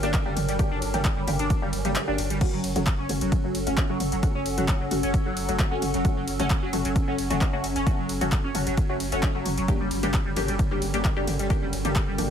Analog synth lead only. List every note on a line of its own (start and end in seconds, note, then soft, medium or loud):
0.03 0.08 D4 loud
0.26 0.33 G3 medium
0.48 0.51 G3 loud
0.71 0.76 D4 loud
0.94 1.01 G3 medium
1.17 1.19 G3 loud
1.39 1.44 D4 loud
1.62 1.69 G3 medium
1.85 1.88 G3 loud
2.08 2.12 D4 loud
2.30 2.37 G3 medium
2.53 2.60 F#3 medium
2.76 2.79 F#3 medium
2.99 3.03 C#4 loud
3.21 3.28 F#3 medium
3.44 3.47 F#3 medium
3.67 3.71 C#4 loud
3.89 3.97 F#3 medium
4.12 4.15 F#3 medium
4.35 4.40 C#4 loud
4.58 4.65 F#3 medium
4.80 4.83 F#3 medium
5.03 5.08 C#4 loud
5.26 5.33 F#3 medium
5.49 5.51 F#3 medium
5.71 5.76 C#4 loud
5.94 6.01 F#3 medium
6.17 6.20 F#3 medium
6.40 6.44 C#4 loud
6.62 6.69 F#3 medium
6.85 6.88 F#3 medium
7.08 7.12 C#4 loud
7.30 7.37 F#3 medium
7.53 7.56 F#3 medium
7.76 7.81 C#4 loud
7.98 8.06 F#3 medium
8.21 8.24 F#3 medium
8.44 8.49 C#4 loud
8.67 8.74 F#3 medium
8.89 8.92 F#3 medium
9.12 9.17 C#4 loud
9.35 9.42 F#3 medium
9.58 9.60 F#3 medium
9.80 9.85 G3 medium
10.03 10.10 G3 medium
10.26 10.29 G3 medium
10.48 10.53 G3 medium
10.71 10.78 G3 medium
10.94 10.97 G3 medium
11.16 11.21 G3 medium
11.39 11.46 G3 medium
11.62 11.65 G3 medium
11.85 11.90 G3 medium
12.08 12.15 G3 medium